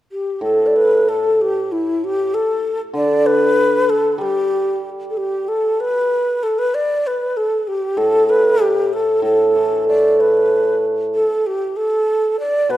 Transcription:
0.12 0.41 G4 medium
0.41 2.32 A2 soft
0.41 0.68 A4 medium
0.66 0.78 D5 soft
0.76 1.10 B4 medium
1.09 1.43 A4 medium
1.41 1.73 G4 medium
1.72 2.06 E4 medium
2.04 2.36 G4 medium
2.34 2.80 A4 medium
2.93 4.20 D3 medium
2.93 3.28 D5 medium
3.26 3.91 B4 medium
3.89 4.23 A4 medium
4.18 6.11 G3 medium
4.18 4.90 G4 medium
5.10 5.19 A4 medium
5.17 5.50 G4 medium
5.48 5.82 A4 medium
5.80 6.45 B4 medium
6.43 6.60 A4 medium
6.59 6.76 B4 medium
6.75 7.08 D5 medium
7.07 7.38 B4 medium
7.37 7.69 A4 medium
7.68 7.99 G4 medium
7.97 9.21 A2 medium
7.97 8.31 A4 medium
8.29 8.63 B4 medium
8.62 8.95 G4 medium
8.93 9.24 A4 medium
9.22 11.15 A2 medium
9.22 9.85 A4 medium
9.56 10.85 E3 soft
9.88 11.17 A3 soft
9.88 10.22 D5 medium
10.20 10.85 B4 medium
11.15 11.48 A4 medium
11.47 11.78 G4 medium
11.77 12.39 A4 medium
12.40 12.72 D5 medium
12.69 12.77 B2 medium
12.69 12.77 B4 medium

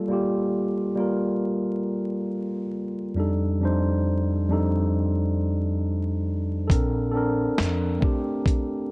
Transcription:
0.00 0.08 G3 medium
0.00 0.09 A#3 medium
0.00 0.11 F4 medium
0.00 3.19 A4 medium
0.08 0.92 G3 medium
0.08 0.93 A#3 medium
0.08 0.94 F4 medium
0.13 0.95 G4 medium
0.95 2.65 G3 medium
0.95 2.65 A#3 medium
0.95 2.66 F4 medium
1.00 2.67 A#4 medium
3.15 3.58 F2 medium
3.15 3.59 G3 medium
3.15 3.59 D4 medium
3.15 3.60 D#4 medium
3.20 3.60 A4 medium
3.60 4.45 F2 medium
3.60 4.46 G3 medium
3.60 4.46 D4 medium
3.60 4.47 D#4 medium
3.65 4.47 C5 medium
4.48 6.17 F2 medium
4.48 6.18 G3 medium
4.48 6.19 D4 medium
4.48 6.19 D#4 medium
4.53 6.20 A4 medium
6.68 7.45 A#1 medium
6.68 7.12 C4 medium
6.68 7.13 D4 medium
6.68 7.10 A4 medium
6.68 kick loud
6.68 closed hi-hat medium
6.73 7.13 A#4 medium
7.11 7.98 C4 medium
7.11 7.99 D4 medium
7.11 7.97 A4 medium
7.17 8.00 A#4 medium
7.58 7.96 F2 loud
7.58 snare loud
7.62 closed hi-hat medium
7.99 8.91 A3 medium
7.99 8.91 C4 medium
7.99 8.91 D4 medium
7.99 kick medium
8.04 8.91 G4 medium
8.46 kick medium
8.46 closed hi-hat medium

